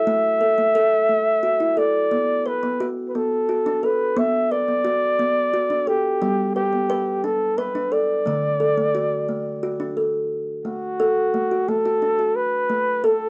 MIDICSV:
0, 0, Header, 1, 3, 480
1, 0, Start_track
1, 0, Key_signature, 2, "major"
1, 0, Tempo, 683371
1, 49, Time_signature, 3, 2, 24, 8
1, 9336, End_track
2, 0, Start_track
2, 0, Title_t, "Flugelhorn"
2, 0, Program_c, 0, 56
2, 0, Note_on_c, 0, 76, 106
2, 1255, Note_on_c, 0, 74, 94
2, 1265, Note_off_c, 0, 76, 0
2, 1734, Note_on_c, 0, 71, 83
2, 1744, Note_off_c, 0, 74, 0
2, 2021, Note_off_c, 0, 71, 0
2, 2166, Note_on_c, 0, 71, 49
2, 2218, Note_on_c, 0, 69, 76
2, 2228, Note_off_c, 0, 71, 0
2, 2702, Note_on_c, 0, 71, 82
2, 2712, Note_off_c, 0, 69, 0
2, 2939, Note_on_c, 0, 76, 88
2, 2949, Note_off_c, 0, 71, 0
2, 3170, Note_on_c, 0, 74, 96
2, 3180, Note_off_c, 0, 76, 0
2, 4131, Note_on_c, 0, 67, 86
2, 4141, Note_off_c, 0, 74, 0
2, 4600, Note_off_c, 0, 67, 0
2, 4605, Note_on_c, 0, 67, 81
2, 5088, Note_on_c, 0, 69, 71
2, 5098, Note_off_c, 0, 67, 0
2, 5319, Note_on_c, 0, 71, 76
2, 5330, Note_off_c, 0, 69, 0
2, 5566, Note_on_c, 0, 74, 83
2, 5576, Note_off_c, 0, 71, 0
2, 7005, Note_off_c, 0, 74, 0
2, 7483, Note_on_c, 0, 66, 80
2, 8207, Note_on_c, 0, 69, 91
2, 8217, Note_off_c, 0, 66, 0
2, 8681, Note_on_c, 0, 71, 100
2, 8691, Note_off_c, 0, 69, 0
2, 9165, Note_on_c, 0, 69, 79
2, 9175, Note_off_c, 0, 71, 0
2, 9336, Note_off_c, 0, 69, 0
2, 9336, End_track
3, 0, Start_track
3, 0, Title_t, "Kalimba"
3, 0, Program_c, 1, 108
3, 50, Note_on_c, 1, 57, 80
3, 272, Note_off_c, 1, 57, 0
3, 287, Note_on_c, 1, 69, 60
3, 409, Note_off_c, 1, 69, 0
3, 409, Note_on_c, 1, 57, 57
3, 528, Note_off_c, 1, 57, 0
3, 529, Note_on_c, 1, 69, 73
3, 766, Note_on_c, 1, 57, 57
3, 769, Note_off_c, 1, 69, 0
3, 1005, Note_on_c, 1, 66, 64
3, 1007, Note_off_c, 1, 57, 0
3, 1126, Note_on_c, 1, 64, 63
3, 1128, Note_off_c, 1, 66, 0
3, 1243, Note_on_c, 1, 69, 67
3, 1247, Note_off_c, 1, 64, 0
3, 1484, Note_on_c, 1, 59, 66
3, 1486, Note_off_c, 1, 69, 0
3, 1724, Note_on_c, 1, 71, 61
3, 1726, Note_off_c, 1, 59, 0
3, 1846, Note_on_c, 1, 59, 63
3, 1847, Note_off_c, 1, 71, 0
3, 1967, Note_off_c, 1, 59, 0
3, 1968, Note_on_c, 1, 66, 77
3, 2208, Note_off_c, 1, 66, 0
3, 2212, Note_on_c, 1, 59, 58
3, 2449, Note_on_c, 1, 66, 69
3, 2450, Note_off_c, 1, 59, 0
3, 2570, Note_off_c, 1, 66, 0
3, 2571, Note_on_c, 1, 62, 70
3, 2689, Note_off_c, 1, 62, 0
3, 2690, Note_on_c, 1, 69, 61
3, 2925, Note_on_c, 1, 59, 84
3, 2929, Note_off_c, 1, 69, 0
3, 3149, Note_off_c, 1, 59, 0
3, 3171, Note_on_c, 1, 71, 61
3, 3289, Note_on_c, 1, 59, 58
3, 3291, Note_off_c, 1, 71, 0
3, 3404, Note_on_c, 1, 66, 77
3, 3408, Note_off_c, 1, 59, 0
3, 3646, Note_off_c, 1, 66, 0
3, 3649, Note_on_c, 1, 59, 68
3, 3889, Note_off_c, 1, 59, 0
3, 3889, Note_on_c, 1, 66, 73
3, 4006, Note_on_c, 1, 62, 67
3, 4010, Note_off_c, 1, 66, 0
3, 4125, Note_on_c, 1, 69, 62
3, 4127, Note_off_c, 1, 62, 0
3, 4367, Note_off_c, 1, 69, 0
3, 4367, Note_on_c, 1, 59, 71
3, 4368, Note_on_c, 1, 55, 68
3, 4590, Note_off_c, 1, 55, 0
3, 4607, Note_off_c, 1, 59, 0
3, 4608, Note_on_c, 1, 71, 61
3, 4726, Note_on_c, 1, 59, 58
3, 4729, Note_off_c, 1, 71, 0
3, 4846, Note_on_c, 1, 71, 79
3, 4847, Note_off_c, 1, 59, 0
3, 5085, Note_on_c, 1, 62, 61
3, 5087, Note_off_c, 1, 71, 0
3, 5323, Note_on_c, 1, 71, 77
3, 5326, Note_off_c, 1, 62, 0
3, 5443, Note_on_c, 1, 62, 70
3, 5446, Note_off_c, 1, 71, 0
3, 5560, Note_on_c, 1, 69, 60
3, 5565, Note_off_c, 1, 62, 0
3, 5800, Note_on_c, 1, 57, 68
3, 5804, Note_off_c, 1, 69, 0
3, 5810, Note_on_c, 1, 50, 77
3, 6031, Note_off_c, 1, 50, 0
3, 6042, Note_on_c, 1, 69, 63
3, 6043, Note_off_c, 1, 57, 0
3, 6165, Note_off_c, 1, 69, 0
3, 6165, Note_on_c, 1, 57, 62
3, 6285, Note_off_c, 1, 57, 0
3, 6285, Note_on_c, 1, 66, 69
3, 6524, Note_on_c, 1, 57, 57
3, 6526, Note_off_c, 1, 66, 0
3, 6765, Note_off_c, 1, 57, 0
3, 6765, Note_on_c, 1, 66, 69
3, 6883, Note_on_c, 1, 62, 67
3, 6886, Note_off_c, 1, 66, 0
3, 7002, Note_on_c, 1, 69, 57
3, 7004, Note_off_c, 1, 62, 0
3, 7244, Note_off_c, 1, 69, 0
3, 7480, Note_on_c, 1, 57, 59
3, 7723, Note_off_c, 1, 57, 0
3, 7724, Note_on_c, 1, 69, 75
3, 7964, Note_off_c, 1, 69, 0
3, 7964, Note_on_c, 1, 57, 62
3, 8085, Note_off_c, 1, 57, 0
3, 8086, Note_on_c, 1, 66, 61
3, 8205, Note_off_c, 1, 66, 0
3, 8207, Note_on_c, 1, 57, 69
3, 8326, Note_on_c, 1, 66, 65
3, 8327, Note_off_c, 1, 57, 0
3, 8444, Note_on_c, 1, 62, 59
3, 8445, Note_off_c, 1, 66, 0
3, 8561, Note_on_c, 1, 66, 53
3, 8565, Note_off_c, 1, 62, 0
3, 8683, Note_off_c, 1, 66, 0
3, 8917, Note_on_c, 1, 57, 64
3, 9158, Note_on_c, 1, 69, 74
3, 9161, Note_off_c, 1, 57, 0
3, 9336, Note_off_c, 1, 69, 0
3, 9336, End_track
0, 0, End_of_file